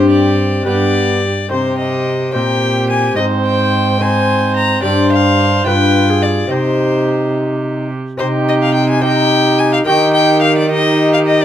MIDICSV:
0, 0, Header, 1, 6, 480
1, 0, Start_track
1, 0, Key_signature, -3, "minor"
1, 0, Tempo, 557103
1, 1305, Time_signature, 6, 3, 24, 8
1, 9864, End_track
2, 0, Start_track
2, 0, Title_t, "Violin"
2, 0, Program_c, 0, 40
2, 88, Note_on_c, 0, 74, 65
2, 565, Note_off_c, 0, 74, 0
2, 577, Note_on_c, 0, 74, 82
2, 1290, Note_off_c, 0, 74, 0
2, 1304, Note_on_c, 0, 72, 74
2, 1533, Note_off_c, 0, 72, 0
2, 1538, Note_on_c, 0, 75, 68
2, 2006, Note_off_c, 0, 75, 0
2, 2011, Note_on_c, 0, 79, 80
2, 2485, Note_off_c, 0, 79, 0
2, 2497, Note_on_c, 0, 80, 70
2, 2718, Note_off_c, 0, 80, 0
2, 2723, Note_on_c, 0, 75, 76
2, 2792, Note_off_c, 0, 75, 0
2, 2975, Note_on_c, 0, 79, 76
2, 3451, Note_on_c, 0, 80, 80
2, 3464, Note_off_c, 0, 79, 0
2, 3926, Note_off_c, 0, 80, 0
2, 3931, Note_on_c, 0, 82, 79
2, 4155, Note_off_c, 0, 82, 0
2, 4160, Note_on_c, 0, 74, 83
2, 4400, Note_off_c, 0, 74, 0
2, 4411, Note_on_c, 0, 77, 80
2, 4876, Note_off_c, 0, 77, 0
2, 4881, Note_on_c, 0, 79, 88
2, 5360, Note_on_c, 0, 74, 73
2, 5373, Note_off_c, 0, 79, 0
2, 5609, Note_on_c, 0, 72, 73
2, 5622, Note_off_c, 0, 74, 0
2, 6337, Note_off_c, 0, 72, 0
2, 7056, Note_on_c, 0, 72, 83
2, 7125, Note_off_c, 0, 72, 0
2, 7311, Note_on_c, 0, 75, 79
2, 7358, Note_off_c, 0, 75, 0
2, 7429, Note_on_c, 0, 77, 75
2, 7529, Note_off_c, 0, 77, 0
2, 7535, Note_on_c, 0, 79, 78
2, 7658, Note_off_c, 0, 79, 0
2, 7661, Note_on_c, 0, 80, 83
2, 7781, Note_off_c, 0, 80, 0
2, 7785, Note_on_c, 0, 79, 98
2, 8258, Note_on_c, 0, 80, 86
2, 8271, Note_off_c, 0, 79, 0
2, 8377, Note_off_c, 0, 80, 0
2, 8382, Note_on_c, 0, 77, 86
2, 8430, Note_off_c, 0, 77, 0
2, 8492, Note_on_c, 0, 79, 99
2, 8726, Note_off_c, 0, 79, 0
2, 8732, Note_on_c, 0, 79, 94
2, 8970, Note_off_c, 0, 79, 0
2, 8976, Note_on_c, 0, 77, 87
2, 9095, Note_off_c, 0, 77, 0
2, 9116, Note_on_c, 0, 74, 83
2, 9225, Note_off_c, 0, 74, 0
2, 9229, Note_on_c, 0, 75, 101
2, 9574, Note_off_c, 0, 75, 0
2, 9594, Note_on_c, 0, 77, 76
2, 9638, Note_off_c, 0, 77, 0
2, 9705, Note_on_c, 0, 75, 90
2, 9831, Note_on_c, 0, 74, 88
2, 9844, Note_off_c, 0, 75, 0
2, 9864, Note_off_c, 0, 74, 0
2, 9864, End_track
3, 0, Start_track
3, 0, Title_t, "Viola"
3, 0, Program_c, 1, 41
3, 0, Note_on_c, 1, 67, 59
3, 573, Note_off_c, 1, 67, 0
3, 580, Note_on_c, 1, 67, 54
3, 1122, Note_off_c, 1, 67, 0
3, 1303, Note_on_c, 1, 67, 49
3, 1989, Note_off_c, 1, 67, 0
3, 2019, Note_on_c, 1, 67, 58
3, 2749, Note_on_c, 1, 72, 59
3, 2762, Note_off_c, 1, 67, 0
3, 3449, Note_off_c, 1, 72, 0
3, 3454, Note_on_c, 1, 72, 58
3, 4156, Note_off_c, 1, 72, 0
3, 4175, Note_on_c, 1, 72, 57
3, 4888, Note_on_c, 1, 71, 60
3, 4901, Note_off_c, 1, 72, 0
3, 5257, Note_on_c, 1, 68, 52
3, 5269, Note_off_c, 1, 71, 0
3, 5611, Note_off_c, 1, 68, 0
3, 5617, Note_on_c, 1, 67, 55
3, 6869, Note_off_c, 1, 67, 0
3, 7073, Note_on_c, 1, 67, 66
3, 7755, Note_off_c, 1, 67, 0
3, 7789, Note_on_c, 1, 67, 66
3, 8491, Note_off_c, 1, 67, 0
3, 8514, Note_on_c, 1, 67, 64
3, 9209, Note_off_c, 1, 67, 0
3, 9227, Note_on_c, 1, 67, 68
3, 9864, Note_off_c, 1, 67, 0
3, 9864, End_track
4, 0, Start_track
4, 0, Title_t, "Lute"
4, 0, Program_c, 2, 24
4, 0, Note_on_c, 2, 43, 45
4, 0, Note_on_c, 2, 62, 42
4, 0, Note_on_c, 2, 67, 40
4, 0, Note_on_c, 2, 72, 44
4, 533, Note_off_c, 2, 62, 0
4, 543, Note_on_c, 2, 62, 39
4, 546, Note_off_c, 2, 43, 0
4, 547, Note_off_c, 2, 67, 0
4, 552, Note_off_c, 2, 72, 0
4, 555, Note_on_c, 2, 67, 37
4, 567, Note_on_c, 2, 71, 38
4, 576, Note_on_c, 2, 43, 43
4, 1096, Note_off_c, 2, 43, 0
4, 1265, Note_off_c, 2, 62, 0
4, 1272, Note_off_c, 2, 67, 0
4, 1278, Note_off_c, 2, 71, 0
4, 1279, Note_on_c, 2, 60, 39
4, 1289, Note_on_c, 2, 63, 40
4, 1299, Note_on_c, 2, 72, 41
4, 1312, Note_on_c, 2, 48, 44
4, 1989, Note_off_c, 2, 60, 0
4, 1993, Note_off_c, 2, 48, 0
4, 1994, Note_off_c, 2, 63, 0
4, 2000, Note_off_c, 2, 72, 0
4, 2001, Note_on_c, 2, 60, 41
4, 2011, Note_on_c, 2, 63, 40
4, 2020, Note_on_c, 2, 72, 41
4, 2030, Note_on_c, 2, 46, 41
4, 2702, Note_off_c, 2, 60, 0
4, 2708, Note_off_c, 2, 46, 0
4, 2711, Note_off_c, 2, 63, 0
4, 2712, Note_on_c, 2, 60, 40
4, 2716, Note_off_c, 2, 72, 0
4, 2722, Note_on_c, 2, 63, 40
4, 2732, Note_on_c, 2, 72, 44
4, 2744, Note_on_c, 2, 44, 48
4, 3420, Note_off_c, 2, 60, 0
4, 3426, Note_off_c, 2, 63, 0
4, 3431, Note_off_c, 2, 72, 0
4, 3433, Note_on_c, 2, 60, 41
4, 3441, Note_on_c, 2, 63, 43
4, 3454, Note_on_c, 2, 72, 46
4, 4137, Note_off_c, 2, 60, 0
4, 4139, Note_off_c, 2, 44, 0
4, 4141, Note_on_c, 2, 62, 43
4, 4142, Note_off_c, 2, 63, 0
4, 4148, Note_off_c, 2, 72, 0
4, 4155, Note_on_c, 2, 67, 45
4, 4165, Note_on_c, 2, 72, 43
4, 4174, Note_on_c, 2, 43, 50
4, 4849, Note_off_c, 2, 62, 0
4, 4855, Note_off_c, 2, 43, 0
4, 4858, Note_off_c, 2, 67, 0
4, 4860, Note_on_c, 2, 62, 46
4, 4864, Note_off_c, 2, 72, 0
4, 4871, Note_on_c, 2, 65, 42
4, 4884, Note_on_c, 2, 71, 44
4, 4892, Note_on_c, 2, 43, 46
4, 5575, Note_off_c, 2, 62, 0
4, 5579, Note_off_c, 2, 43, 0
4, 5579, Note_on_c, 2, 60, 38
4, 5581, Note_off_c, 2, 65, 0
4, 5588, Note_off_c, 2, 71, 0
4, 5591, Note_on_c, 2, 63, 41
4, 5604, Note_on_c, 2, 67, 40
4, 5614, Note_on_c, 2, 48, 43
4, 6859, Note_off_c, 2, 48, 0
4, 7015, Note_off_c, 2, 60, 0
4, 7021, Note_off_c, 2, 63, 0
4, 7028, Note_off_c, 2, 67, 0
4, 7043, Note_on_c, 2, 60, 47
4, 7051, Note_on_c, 2, 63, 47
4, 7061, Note_on_c, 2, 67, 45
4, 7071, Note_on_c, 2, 48, 51
4, 7752, Note_off_c, 2, 60, 0
4, 7757, Note_off_c, 2, 63, 0
4, 7762, Note_off_c, 2, 67, 0
4, 7762, Note_on_c, 2, 60, 46
4, 7773, Note_on_c, 2, 63, 49
4, 7782, Note_on_c, 2, 67, 46
4, 8470, Note_off_c, 2, 60, 0
4, 8472, Note_off_c, 2, 48, 0
4, 8476, Note_off_c, 2, 63, 0
4, 8480, Note_off_c, 2, 67, 0
4, 8486, Note_on_c, 2, 58, 48
4, 8496, Note_on_c, 2, 63, 47
4, 8507, Note_on_c, 2, 67, 48
4, 8517, Note_on_c, 2, 51, 50
4, 9864, Note_off_c, 2, 51, 0
4, 9864, Note_off_c, 2, 58, 0
4, 9864, Note_off_c, 2, 63, 0
4, 9864, Note_off_c, 2, 67, 0
4, 9864, End_track
5, 0, Start_track
5, 0, Title_t, "Trombone"
5, 0, Program_c, 3, 57
5, 0, Note_on_c, 3, 60, 56
5, 581, Note_on_c, 3, 59, 57
5, 594, Note_off_c, 3, 60, 0
5, 1065, Note_off_c, 3, 59, 0
5, 1309, Note_on_c, 3, 60, 58
5, 1992, Note_off_c, 3, 60, 0
5, 2021, Note_on_c, 3, 60, 59
5, 2724, Note_off_c, 3, 60, 0
5, 2741, Note_on_c, 3, 60, 60
5, 3442, Note_off_c, 3, 60, 0
5, 3455, Note_on_c, 3, 60, 65
5, 4170, Note_on_c, 3, 62, 66
5, 4183, Note_off_c, 3, 60, 0
5, 4885, Note_on_c, 3, 65, 67
5, 4898, Note_off_c, 3, 62, 0
5, 5600, Note_off_c, 3, 65, 0
5, 5605, Note_on_c, 3, 63, 56
5, 6796, Note_off_c, 3, 63, 0
5, 7062, Note_on_c, 3, 63, 65
5, 7750, Note_off_c, 3, 63, 0
5, 7781, Note_on_c, 3, 63, 74
5, 8487, Note_off_c, 3, 63, 0
5, 8501, Note_on_c, 3, 63, 66
5, 9202, Note_off_c, 3, 63, 0
5, 9217, Note_on_c, 3, 63, 75
5, 9864, Note_off_c, 3, 63, 0
5, 9864, End_track
6, 0, Start_track
6, 0, Title_t, "Cello"
6, 0, Program_c, 4, 42
6, 0, Note_on_c, 4, 43, 62
6, 563, Note_off_c, 4, 43, 0
6, 578, Note_on_c, 4, 43, 56
6, 1120, Note_off_c, 4, 43, 0
6, 1307, Note_on_c, 4, 48, 62
6, 2030, Note_on_c, 4, 46, 55
6, 2043, Note_off_c, 4, 48, 0
6, 2739, Note_off_c, 4, 46, 0
6, 2744, Note_on_c, 4, 44, 63
6, 4145, Note_off_c, 4, 44, 0
6, 4170, Note_on_c, 4, 43, 66
6, 4874, Note_off_c, 4, 43, 0
6, 4889, Note_on_c, 4, 43, 65
6, 5597, Note_off_c, 4, 43, 0
6, 5610, Note_on_c, 4, 48, 61
6, 6865, Note_off_c, 4, 48, 0
6, 7069, Note_on_c, 4, 48, 71
6, 8470, Note_off_c, 4, 48, 0
6, 8506, Note_on_c, 4, 51, 76
6, 9864, Note_off_c, 4, 51, 0
6, 9864, End_track
0, 0, End_of_file